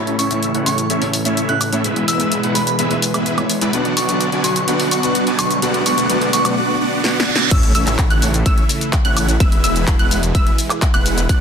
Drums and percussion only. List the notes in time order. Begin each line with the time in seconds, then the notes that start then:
0.07 closed hi-hat
0.19 open hi-hat, shaker
0.31 closed hi-hat, shaker
0.43 closed hi-hat, shaker
0.55 closed hi-hat
0.66 open hi-hat, shaker
0.78 closed hi-hat, shaker
0.90 closed hi-hat, shaker
1.02 open hi-hat
1.13 open hi-hat, shaker
1.25 closed hi-hat, shaker
1.37 closed hi-hat, shaker
1.49 closed hi-hat
1.61 open hi-hat, high woodblock, shaker
1.73 closed hi-hat, shaker
1.84 closed hi-hat, shaker
1.96 closed hi-hat
2.08 open hi-hat, shaker
2.20 closed hi-hat, shaker
2.32 closed hi-hat, shaker
2.43 closed hi-hat
2.55 open hi-hat, shaker
2.67 closed hi-hat, shaker
2.79 closed hi-hat, shaker
2.91 closed hi-hat
3.02 open hi-hat, shaker
3.14 closed hi-hat, high woodblock, shaker
3.26 closed hi-hat, shaker
3.38 closed hi-hat, high woodblock
3.50 open hi-hat, shaker
3.61 closed hi-hat, shaker
3.73 closed hi-hat, shaker
3.85 closed hi-hat
3.97 open hi-hat, shaker
4.09 closed hi-hat, shaker
4.21 closed hi-hat, shaker
4.32 closed hi-hat
4.44 open hi-hat, shaker
4.56 closed hi-hat, shaker
4.68 closed hi-hat, shaker
4.80 open hi-hat
4.91 open hi-hat, shaker
5.03 closed hi-hat, shaker
5.15 closed hi-hat, shaker
5.27 closed hi-hat
5.39 open hi-hat, high woodblock, shaker
5.51 closed hi-hat, shaker
5.62 closed hi-hat, shaker
5.74 closed hi-hat
5.86 open hi-hat, shaker
5.98 closed hi-hat, shaker
6.10 closed hi-hat, shaker
6.21 closed hi-hat
6.33 open hi-hat, shaker
6.45 closed hi-hat, high woodblock, shaker
7.04 snare
7.20 snare
7.36 snare
7.51 kick, closed hi-hat, crash, shaker
7.63 closed hi-hat
7.75 open hi-hat, shaker
7.87 clap, closed hi-hat, shaker
7.99 kick, clap, closed hi-hat, shaker
8.10 closed hi-hat
8.22 open hi-hat, shaker
8.34 closed hi-hat, shaker
8.46 kick, closed hi-hat, shaker
8.58 closed hi-hat
8.69 open hi-hat, shaker
8.81 closed hi-hat, shaker
8.93 kick, clap, closed hi-hat, shaker
9.05 closed hi-hat
9.17 open hi-hat, high woodblock, shaker
9.29 closed hi-hat, shaker
9.40 kick, closed hi-hat, shaker
9.52 closed hi-hat
9.64 open hi-hat, shaker
9.76 closed hi-hat, shaker
9.87 kick, clap, closed hi-hat, shaker
9.99 closed hi-hat
10.11 open hi-hat, shaker
10.23 closed hi-hat, shaker
10.35 kick, closed hi-hat, shaker
10.47 closed hi-hat
10.58 open hi-hat, shaker
10.70 clap, closed hi-hat, high woodblock, shaker
10.82 kick, clap, closed hi-hat, shaker
10.94 closed hi-hat, high woodblock
11.06 open hi-hat, shaker
11.18 closed hi-hat, shaker
11.29 kick, closed hi-hat, shaker